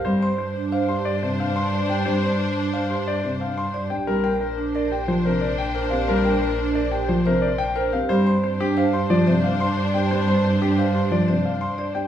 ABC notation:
X:1
M:6/4
L:1/8
Q:1/4=179
K:Gm
V:1 name="Grand piano"
c c' c z f c' d c f c' c g | c c' c z f c' d c f c' c g | B g B z d g c B d g B f | B g B z d g c B d g B f |
c c' c G f c' d c f c' c g | c c' c G f c' d c f c' c g |]
V:2 name="String section"
[Dc]12- | [Dc]8- [Dc]3 z | [Dc]12- | [Dc]8- [Dc]3 z |
[Dc]12- | [Dc]8- [Dc]3 z |]
V:3 name="Vibraphone"
C c z D c G z4 d G | C c z D c G z4 d G | C B z D B G z c z2 c G | C B z D B G z c z2 c G |
C c C D c G z d z2 d G | C c C D c G z d z2 d G |]
V:4 name="Grand piano" clef=bass
G, z6 C, z3 D | G, z6 C, z3 D | G, z4 z F, C, z3 C | G, z4 z F, C, z3 C |
G, z4 z F, C, z3 D | G, z4 z F, C, z3 D |]
V:5 name="Double bass" clef=bass
G,,12- | G,,12 | B,,,12- | B,,,12 |
G,,12- | G,,12 |]